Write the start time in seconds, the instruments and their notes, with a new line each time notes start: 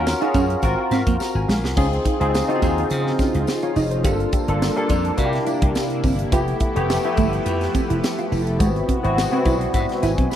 Already playing: slap bass D#2, tine electric piano C#4 F4 F#4 A#4
0.06 muted clean electric guitar stroke, snare, tambourine
0.21 tine electric piano C#4 F4 F#4 G#4, clean electric guitar D#4, closed hi-hat
0.34 slap bass F#2, clean electric guitar C#4, kick, closed hi-hat, tambourine
0.50 closed hi-hat
0.62 slap bass G#1, tine electric piano C4 F4 F#4 A#4, muted clean electric guitar stroke, kick, closed hi-hat, tambourine
0.91 slap bass G#2, clean electric guitar C4, snare, closed hi-hat, tambourine
1.07 slap bass F2, clean electric guitar A#3, kick, closed hi-hat
1.20 tine electric piano A#5, snare, tambourine
1.35 slap bass G#1, tine electric piano G#5
1.48 slap bass A#1, clean electric guitar G#3, tine electric piano F5, snare, tambourine
1.63 slap bass C2, snare
1.76 slap bass C#2, analog synth pad C#3 C4 D#4 F4, tine electric piano C4 D#4 F4 G#4, clean electric guitar C#4, kick, tambourine, crash
1.93 muted clean electric guitar stroke, closed hi-hat
2.05 clean electric guitar D#4, kick, closed hi-hat
2.20 slap bass C#2, tine electric piano C4 D#4 F4 G#4, closed hi-hat
2.34 muted clean electric guitar stroke, snare, tambourine
2.48 tine electric piano C4 D#4 F4 F#4, clean electric guitar D#4, closed hi-hat
2.55 tine electric piano G#4
2.62 slap bass D#2, clean electric guitar C4, kick, closed hi-hat, tambourine
2.78 closed hi-hat
2.90 slap bass C#3, muted clean electric guitar stroke, closed hi-hat, tambourine
3.07 snare
3.19 clean electric guitar C#4, kick, snare, closed hi-hat, tambourine
3.34 slap bass C#2, clean electric guitar D#4, closed hi-hat
3.47 muted clean electric guitar stroke, snare, tambourine
3.62 clean electric guitar F4, tine electric piano C#5, closed hi-hat
3.76 slap bass F1, clean electric guitar D#4, tine electric piano D#5, open hi-hat, tambourine
3.91 tine electric piano C5, closed hi-hat
4.03 slap bass G1, analog synth pad G3 A#3 D4, tine electric piano A#3 D4 F4 A4, clean electric guitar G4, kick, closed hi-hat, tambourine
4.20 muted clean electric guitar stroke, closed hi-hat
4.33 clean electric guitar G4, kick, closed hi-hat, tambourine
4.48 slap bass G1, tine electric piano A#3 D4 F4 A4, closed hi-hat
4.62 muted clean electric guitar stroke, snare, tambourine
4.76 tine electric piano A#3 D4 F4 A4, clean electric guitar G4, closed hi-hat
4.89 slap bass F2, clean electric guitar D4, kick, closed hi-hat, tambourine
5.05 closed hi-hat
5.17 slap bass C3, analog synth pad C3 A#3 E4, tine electric piano A#3 D4 E4 F#4, muted clean electric guitar stroke, kick, closed hi-hat
5.25 tine electric piano G4
5.33 snare, closed hi-hat
5.47 clean electric guitar E4, closed hi-hat, tambourine
5.62 slap bass C2, clean electric guitar G4, kick, closed hi-hat
5.75 snare, tambourine
5.90 closed hi-hat
6.04 slap bass G1, clean electric guitar C4, kick, open hi-hat, tambourine
6.19 closed hi-hat
6.32 slap bass F1, analog synth pad F3 G4 A4 B4, tine electric piano A3 B3 E4 G4, clean electric guitar F4, kick, closed hi-hat, tambourine
6.48 muted clean electric guitar stroke, closed hi-hat
6.60 clean electric guitar E4, kick, closed hi-hat
6.75 slap bass F1, tine electric piano A3 B3 E4 G4, closed hi-hat
6.89 muted clean electric guitar stroke, snare, tambourine
7.04 tine electric piano A3 B3 E4 G4, clean electric guitar E4, closed hi-hat
7.12 tine electric piano A4
7.17 slap bass G1, clean electric guitar A3, kick, closed hi-hat, tambourine
7.33 closed hi-hat
7.46 slap bass F2, muted clean electric guitar stroke, closed hi-hat
7.61 snare, closed hi-hat
7.74 clean electric guitar C4, kick, closed hi-hat, tambourine
7.90 slap bass F1, clean electric guitar E4, closed hi-hat
8.03 muted clean electric guitar stroke, snare, tambourine
8.19 clean electric guitar F4, closed hi-hat
8.32 slap bass F1, clean electric guitar E4, open hi-hat, tambourine
8.47 closed hi-hat
8.59 slap bass G#1, analog synth pad C3 G#3 F#4, clean electric guitar G#3, tine electric piano B3 C4 E4 F#4, kick, closed hi-hat, tambourine
8.76 muted clean electric guitar stroke, closed hi-hat
8.88 clean electric guitar C4, kick, closed hi-hat
9.03 slap bass G#1, tine electric piano B3 C4 E4 F#4, closed hi-hat
9.17 muted clean electric guitar stroke, snare, tambourine
9.32 tine electric piano B3 C4 E4 F#4, clean electric guitar C4, closed hi-hat
9.45 slap bass B1, clean electric guitar E4, tine electric piano D5, kick, closed hi-hat, tambourine
9.61 closed hi-hat
9.74 slap bass G#2, tine electric piano E5, muted clean electric guitar stroke, kick, closed hi-hat, tambourine
9.89 snare, closed hi-hat
10.02 slap bass G#1, clean electric guitar E4, tine electric piano G#5, snare, closed hi-hat, tambourine
10.18 slap bass B1, clean electric guitar C4, kick, closed hi-hat
10.31 tine electric piano B5, snare, tambourine